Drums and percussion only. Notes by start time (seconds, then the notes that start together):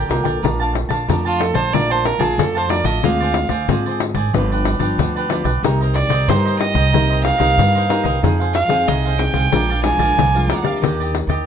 0.11 pandeiro
0.25 pandeiro
0.45 pandeiro
0.62 pandeiro
0.75 pandeiro
0.90 pandeiro
1.09 pandeiro
1.27 pandeiro
1.41 pandeiro
1.55 pandeiro
1.74 pandeiro
1.92 pandeiro
2.05 pandeiro
2.21 pandeiro
2.39 pandeiro
2.57 pandeiro
2.70 pandeiro
2.85 pandeiro
3.04 pandeiro
3.21 pandeiro
3.34 pandeiro
3.49 pandeiro
3.69 pandeiro
3.86 pandeiro
4.00 pandeiro
4.14 pandeiro
4.34 pandeiro
4.52 pandeiro
4.65 pandeiro
4.80 pandeiro
4.99 pandeiro
5.17 pandeiro
5.30 pandeiro
5.45 pandeiro
5.64 pandeiro
5.82 pandeiro
5.96 pandeiro
6.10 pandeiro
6.29 pandeiro
6.47 pandeiro
6.61 pandeiro
6.75 pandeiro
6.94 pandeiro
7.12 pandeiro
7.25 pandeiro
7.40 pandeiro
7.59 pandeiro
7.76 pandeiro
7.90 pandeiro
8.05 pandeiro
8.24 pandeiro
8.41 pandeiro
8.55 pandeiro
8.70 pandeiro
8.88 pandeiro
9.05 pandeiro
9.19 pandeiro
9.34 pandeiro
9.52 pandeiro
9.70 pandeiro
9.84 pandeiro
9.99 pandeiro
10.19 pandeiro
10.36 pandeiro
10.50 pandeiro
10.64 pandeiro
10.84 pandeiro
11.01 pandeiro
11.15 pandeiro
11.30 pandeiro